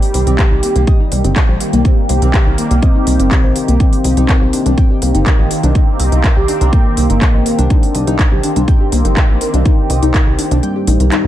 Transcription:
Already playing: analog synth pad D#3 G3 A#3 G4, soft synth lead G4
0.02 open hi-hat
0.14 analog synth bass C2, synth pluck C5, open hi-hat
0.27 analog synth bass C2, synth pluck C4, closed hi-hat
0.39 synth pluck G4, kick, clap, closed hi-hat
0.51 analog synth bass C2, synth pluck D#4
0.63 synth pluck A#3, open hi-hat
0.76 analog synth bass C2, synth pluck A#3, closed hi-hat
0.87 synth pluck D#5, kick, closed hi-hat
1.00 synth pluck D#4
1.12 analog synth bass C2, synth pluck G3, open hi-hat
1.24 analog synth bass G1, synth pluck C4, closed hi-hat
1.36 synth pluck G4, kick, clap, closed hi-hat
1.49 analog synth bass A#1, synth pluck C5
1.61 synth pluck G4, open hi-hat
1.73 analog synth bass C2, synth pluck A#3, closed hi-hat
1.85 synth pluck C4, kick, closed hi-hat
2.09 analog synth bass C2, synth pluck C5, open hi-hat
2.22 analog synth bass C2, synth pluck C4, closed hi-hat
2.34 synth pluck G4, kick, clap, closed hi-hat
2.46 analog synth bass C2, synth pluck D#4
2.58 synth pluck A#3, open hi-hat
2.71 analog synth bass C2, synth pluck A#3, closed hi-hat
2.82 soft synth lead C4, synth pluck D#5, kick, closed hi-hat
2.95 synth pluck D#4
3.07 analog synth bass C2, synth pluck G3, open hi-hat
3.20 analog synth bass G1, synth pluck C4, closed hi-hat
3.31 synth pluck G4, kick, clap, closed hi-hat
3.44 analog synth bass A#1, synth pluck C5
3.56 synth pluck G4, open hi-hat
3.68 analog synth bass C2, synth pluck A#3, closed hi-hat
3.80 soft synth lead C4, analog synth pad C4, synth pluck D#4, kick, closed hi-hat
3.93 open hi-hat
4.04 analog synth bass C2, synth pluck D#5, open hi-hat
4.17 analog synth bass C2, synth pluck D#4, closed hi-hat
4.29 synth pluck A#4, kick, clap, closed hi-hat
4.42 analog synth bass C2, synth pluck G4
4.53 synth pluck D4, open hi-hat
4.66 analog synth bass C2, synth pluck D4, closed hi-hat
4.78 synth pluck G5, kick, closed hi-hat
4.90 synth pluck G4
5.02 analog synth bass C2, synth pluck A#3, open hi-hat
5.15 analog synth bass G1, synth pluck D#4, closed hi-hat
5.26 synth pluck A#4, kick, clap, closed hi-hat
5.39 analog synth bass A#1, synth pluck D#5
5.51 synth pluck A#4, open hi-hat
5.63 analog synth bass C2, synth pluck D4, closed hi-hat
5.75 synth pluck D#4, kick, closed hi-hat
6.00 analog synth bass C2, synth pluck D#5, open hi-hat
6.12 analog synth bass C2, synth pluck D#4, closed hi-hat
6.24 synth pluck A#4, kick, clap, closed hi-hat
6.37 analog synth bass C2, synth pluck G4
6.48 synth pluck D4, open hi-hat
6.61 analog synth bass C2, synth pluck D4, closed hi-hat
6.73 soft synth lead A#3, synth pluck G5, kick, closed hi-hat
6.85 synth pluck G4
6.97 analog synth bass C2, synth pluck A#3, open hi-hat
7.10 analog synth bass G1, synth pluck D#4, closed hi-hat
7.22 synth pluck A#4, kick, clap, closed hi-hat
7.34 analog synth bass A#1, synth pluck D#5
7.46 synth pluck A#4, open hi-hat
7.59 analog synth bass C2, synth pluck D4, closed hi-hat
7.70 soft synth lead D4, synth pluck D#4, kick, closed hi-hat
7.83 open hi-hat
7.95 analog synth bass C2, synth pluck D#5, open hi-hat
8.07 analog synth bass C2, synth pluck D#4, closed hi-hat
8.19 synth pluck A#4, kick, clap, closed hi-hat
8.32 analog synth bass C2, synth pluck G4
8.43 synth pluck D4, open hi-hat
8.56 analog synth bass C2, synth pluck D4, closed hi-hat
8.68 synth pluck G5, kick, closed hi-hat
8.81 synth pluck G4
8.92 analog synth bass C2, synth pluck A#3, open hi-hat
9.05 analog synth bass G1, synth pluck D#4, closed hi-hat
9.17 synth pluck A#4, kick, clap, closed hi-hat
9.29 analog synth bass A#1, synth pluck D#5
9.41 synth pluck A#4, open hi-hat
9.54 analog synth bass C2, synth pluck D4, closed hi-hat
9.65 synth pluck D#4, kick, closed hi-hat
9.90 analog synth bass C2, synth pluck D#5, open hi-hat
10.03 analog synth bass C2, synth pluck D#4, closed hi-hat
10.14 synth pluck A#4, kick, clap, closed hi-hat
10.27 analog synth bass C2, synth pluck G4
10.39 synth pluck D4, open hi-hat
10.51 analog synth bass C2, synth pluck D4, closed hi-hat
10.63 soft synth lead G3, synth pluck G5, closed hi-hat
10.76 synth pluck G4
10.87 analog synth bass A#1, synth pluck D#4, open hi-hat
11.00 analog synth bass C2, synth pluck A#4, closed hi-hat
11.12 synth pluck D#4, clap, closed hi-hat

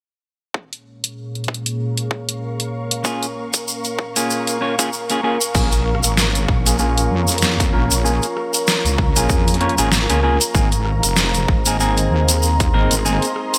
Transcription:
0.53 analog synth pad A#2 A#3 G#4 C#5, ambient pad A#4, kick
0.64 ambient pad F5
0.72 ambient pad C#6, closed hi-hat
0.80 ambient pad A#5
1.04 closed hi-hat
1.35 closed hi-hat
1.44 closed hi-hat
1.48 kick
1.54 closed hi-hat
1.66 closed hi-hat
1.97 closed hi-hat
2.11 kick
2.29 closed hi-hat
2.60 closed hi-hat
2.91 closed hi-hat
3.04 clean electric guitar A#3 C#4 F4 G#4, analog synth pad A#4, kick, shaker
3.23 closed hi-hat, shaker
3.54 kick, closed hi-hat, shaker
3.68 shaker
3.84 closed hi-hat, shaker
3.99 kick
4.16 clean electric guitar A#3 C#4 F4 G#4, closed hi-hat, shaker
4.30 shaker
4.47 closed hi-hat, shaker
4.61 clean electric guitar A#3 C#4 F4 C#5
4.79 clean electric guitar A#3 C#4 F4 G#4, kick, closed hi-hat, shaker
4.93 shaker
5.10 clean electric guitar A#3 C#4 F4 G#4, closed hi-hat, shaker
5.23 clean electric guitar A#3 C#4 F4 G#4
5.41 closed hi-hat, shaker
5.54 wobble bass A#1, clean electric guitar A#3 C#4 F4 G#4, analog synth pad F4 A#4 C#5 G#5, kick, crash, shaker
5.72 closed hi-hat, shaker
5.95 cross-stick
6.03 wobble bass G#1, cross-stick, closed hi-hat, shaker
6.17 snare, shaker
6.35 closed hi-hat, shaker
6.48 wobble bass A#1, kick
6.66 clean electric guitar A#3 C#4 F4 G#4, closed hi-hat, shaker
6.79 clean electric guitar A#3 C#4 F4 G#4, shaker
6.98 closed hi-hat, shaker
7.11 wobble bass F2
7.27 closed hi-hat, shaker
7.32 closed hi-hat
7.38 closed hi-hat, shaker
7.42 snare
7.60 kick, closed hi-hat, shaker
7.73 wobble bass A#1, clean electric guitar A#3 C#4 F4 A#4
7.91 wobble bass A#1, closed hi-hat, shaker
8.04 clean electric guitar A#3 C#4 F4 G#4, analog synth pad A#5, shaker
8.22 closed hi-hat, shaker
8.37 cross-stick
8.54 closed hi-hat, shaker
8.67 snare, shaker
8.85 wobble bass C#2, closed hi-hat, shaker
8.98 kick
9.16 wobble bass A#1, clean electric guitar A#3 C#4 F4 G#4, closed hi-hat, shaker
9.29 wobble bass F2, kick, shaker
9.48 closed hi-hat, shaker
9.54 closed hi-hat
9.60 clean electric guitar A#3 C#4 F4 C#5, closed hi-hat
9.69 closed hi-hat
9.78 wobble bass G#1, clean electric guitar A#3 C#4 F4 G#4, closed hi-hat, shaker
9.92 snare, shaker
10.09 wobble bass C#2, clean electric guitar A#3 C#4 F4 G#4, closed hi-hat, shaker
10.23 clean electric guitar A#3 C#4 F4 G#4
10.41 closed hi-hat, shaker
10.54 wobble bass G#1, clean electric guitar A#3 C4 D#4 G#4, analog synth pad G#4 C5 D#5 A#5, ambient pad G#4, kick, shaker
10.72 closed hi-hat, shaker
10.85 cross-stick
10.97 ambient pad D#5
11.03 wobble bass F1, cross-stick, closed hi-hat, shaker
11.16 snare, shaker
11.34 closed hi-hat, shaker
11.48 wobble bass G#1, ambient pad C6, kick
11.65 clean electric guitar A#3 C4 D#4 G#4, closed hi-hat, shaker
11.80 clean electric guitar A#3 C4 D#4 G#4, shaker
11.97 closed hi-hat, shaker
12.10 wobble bass D#2
12.29 closed hi-hat, shaker
12.43 shaker
12.60 kick, closed hi-hat, shaker
12.73 wobble bass G#1, clean electric guitar A#3 C4 D#4 A#4
12.91 wobble bass G#1, closed hi-hat, shaker
13.05 clean electric guitar A#3 C4 D#4 G#4, shaker
13.22 closed hi-hat, shaker
13.36 cross-stick
13.54 closed hi-hat, shaker

